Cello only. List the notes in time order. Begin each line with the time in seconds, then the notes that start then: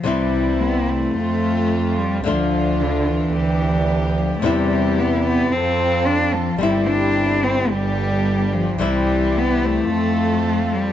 0.05 G3
0.61 B3
0.90 A3
1.98 G3
2.28 F3
2.81 D3
3.08 E3
4.17 F3
4.37 A3
4.44 G3
4.99 B3
5.26 B3
5.52 C4
6.07 D4
6.35 F3
6.61 G3
6.87 D4
7.43 C4
7.70 G3
8.53 F3
8.82 G3
9.38 B3
9.65 A3
10.74 G3